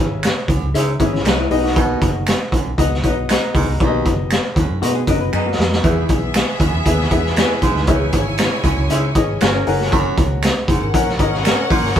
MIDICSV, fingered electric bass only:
0, 0, Header, 1, 2, 480
1, 0, Start_track
1, 0, Key_signature, 5, "major"
1, 0, Tempo, 510204
1, 1658, Time_signature, 4, 2, 24, 8
1, 11289, End_track
2, 0, Start_track
2, 0, Title_t, "Fingered electric bass"
2, 0, Program_c, 0, 33
2, 0, Note_on_c, 0, 32, 78
2, 277, Note_off_c, 0, 32, 0
2, 452, Note_on_c, 0, 37, 92
2, 555, Note_off_c, 0, 37, 0
2, 581, Note_on_c, 0, 37, 82
2, 680, Note_off_c, 0, 37, 0
2, 695, Note_on_c, 0, 49, 100
2, 897, Note_off_c, 0, 49, 0
2, 939, Note_on_c, 0, 32, 80
2, 1175, Note_off_c, 0, 32, 0
2, 1175, Note_on_c, 0, 36, 86
2, 1376, Note_off_c, 0, 36, 0
2, 1416, Note_on_c, 0, 35, 99
2, 1818, Note_off_c, 0, 35, 0
2, 1895, Note_on_c, 0, 30, 89
2, 2197, Note_off_c, 0, 30, 0
2, 2371, Note_on_c, 0, 34, 89
2, 2474, Note_off_c, 0, 34, 0
2, 2497, Note_on_c, 0, 35, 90
2, 2598, Note_off_c, 0, 35, 0
2, 2616, Note_on_c, 0, 37, 87
2, 2858, Note_off_c, 0, 37, 0
2, 2858, Note_on_c, 0, 35, 81
2, 3158, Note_off_c, 0, 35, 0
2, 3337, Note_on_c, 0, 37, 96
2, 3437, Note_off_c, 0, 37, 0
2, 3459, Note_on_c, 0, 36, 88
2, 3559, Note_off_c, 0, 36, 0
2, 3578, Note_on_c, 0, 35, 98
2, 3778, Note_off_c, 0, 35, 0
2, 3819, Note_on_c, 0, 30, 83
2, 4119, Note_off_c, 0, 30, 0
2, 4291, Note_on_c, 0, 39, 91
2, 4394, Note_off_c, 0, 39, 0
2, 4418, Note_on_c, 0, 42, 81
2, 4518, Note_off_c, 0, 42, 0
2, 4533, Note_on_c, 0, 47, 99
2, 4735, Note_off_c, 0, 47, 0
2, 4772, Note_on_c, 0, 30, 90
2, 4974, Note_off_c, 0, 30, 0
2, 5013, Note_on_c, 0, 42, 82
2, 5215, Note_off_c, 0, 42, 0
2, 5257, Note_on_c, 0, 41, 79
2, 5457, Note_off_c, 0, 41, 0
2, 5495, Note_on_c, 0, 40, 107
2, 5696, Note_off_c, 0, 40, 0
2, 5732, Note_on_c, 0, 35, 93
2, 6034, Note_off_c, 0, 35, 0
2, 6208, Note_on_c, 0, 39, 86
2, 6312, Note_off_c, 0, 39, 0
2, 6335, Note_on_c, 0, 40, 83
2, 6435, Note_off_c, 0, 40, 0
2, 6452, Note_on_c, 0, 39, 89
2, 6654, Note_off_c, 0, 39, 0
2, 6689, Note_on_c, 0, 40, 88
2, 6992, Note_off_c, 0, 40, 0
2, 7172, Note_on_c, 0, 35, 89
2, 7273, Note_off_c, 0, 35, 0
2, 7291, Note_on_c, 0, 38, 92
2, 7393, Note_off_c, 0, 38, 0
2, 7410, Note_on_c, 0, 37, 99
2, 7612, Note_off_c, 0, 37, 0
2, 7651, Note_on_c, 0, 32, 87
2, 7953, Note_off_c, 0, 32, 0
2, 8127, Note_on_c, 0, 37, 86
2, 8230, Note_off_c, 0, 37, 0
2, 8251, Note_on_c, 0, 37, 93
2, 8353, Note_off_c, 0, 37, 0
2, 8371, Note_on_c, 0, 49, 106
2, 8573, Note_off_c, 0, 49, 0
2, 8609, Note_on_c, 0, 32, 89
2, 8811, Note_off_c, 0, 32, 0
2, 8857, Note_on_c, 0, 31, 85
2, 9056, Note_off_c, 0, 31, 0
2, 9101, Note_on_c, 0, 30, 91
2, 9498, Note_off_c, 0, 30, 0
2, 9574, Note_on_c, 0, 37, 86
2, 9874, Note_off_c, 0, 37, 0
2, 10049, Note_on_c, 0, 30, 88
2, 10151, Note_off_c, 0, 30, 0
2, 10176, Note_on_c, 0, 32, 90
2, 10275, Note_off_c, 0, 32, 0
2, 10291, Note_on_c, 0, 34, 90
2, 10493, Note_off_c, 0, 34, 0
2, 10532, Note_on_c, 0, 32, 93
2, 10833, Note_off_c, 0, 32, 0
2, 11012, Note_on_c, 0, 34, 85
2, 11113, Note_off_c, 0, 34, 0
2, 11128, Note_on_c, 0, 31, 87
2, 11231, Note_off_c, 0, 31, 0
2, 11253, Note_on_c, 0, 30, 102
2, 11289, Note_off_c, 0, 30, 0
2, 11289, End_track
0, 0, End_of_file